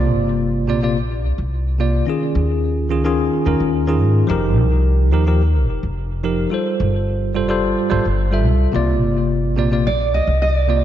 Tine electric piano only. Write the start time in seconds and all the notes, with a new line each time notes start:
Already playing: C3 A#3 F4 D5
0.68 C3 A#3 F4 D5
0.82 C3 A#3 F4 D5
1.79 C3 A#3 F4 D5
2.06 D#3 C#4 F4 G#4
2.90 D#3 C#4 F4 G#4
3.04 D#3 C#4 F4 G#4
3.45 D#3 C#4 F4 A#4
3.87 D#3 C#4 F4 G#4
4.27 F3 D#4 G4
4.31 A#4
5.12 F3 D#4 G4 A#4
5.26 F3 D#4 G4 A#4
6.23 F3 D#4 G4 A#4
6.50 G3 F4 A4 C5
7.35 G3 F4 A4 C5
7.48 G3 F4 A4 C5
7.90 G3 F4 A4 C5
8.31 G3 F4 A4 E5
8.72 C3 A#3 F4 D5
9.57 C3 A#3 F4 D5
9.71 C3 A#3 F4 D5
10.68 C3 A#3 F4 D5